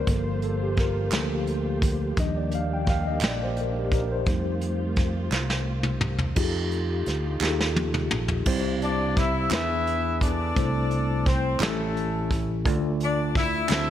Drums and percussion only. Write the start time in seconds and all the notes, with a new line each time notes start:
0.07 kick, closed hi-hat
0.42 closed hi-hat
0.77 kick, snare, closed hi-hat
1.11 snare, clap, closed hi-hat
1.47 closed hi-hat
1.82 kick, closed hi-hat
2.17 kick, closed hi-hat
2.51 closed hi-hat
2.87 kick, snare, closed hi-hat
3.21 snare, clap, closed hi-hat
3.57 closed hi-hat
3.92 kick, closed hi-hat
4.26 kick, closed hi-hat
4.61 closed hi-hat
4.96 kick, snare, closed hi-hat
5.32 snare, clap
5.50 snare
5.83 mid tom
6.01 mid tom
6.18 floor tom
6.36 kick, crash
6.71 closed hi-hat
7.06 snare, closed hi-hat
7.41 snare, clap
7.61 snare
7.76 high tom
7.94 mid tom
8.11 mid tom
8.28 floor tom
8.46 kick, crash
8.82 closed hi-hat
9.17 kick, snare, closed hi-hat
9.51 snare, clap, closed hi-hat
9.87 closed hi-hat
10.21 kick, closed hi-hat
10.56 kick, closed hi-hat
10.91 closed hi-hat
11.26 kick, snare, closed hi-hat
11.60 snare, clap, closed hi-hat
11.96 closed hi-hat
12.31 kick, closed hi-hat
12.66 kick, closed hi-hat
13.00 closed hi-hat
13.35 kick, snare, closed hi-hat
13.69 snare, clap, closed hi-hat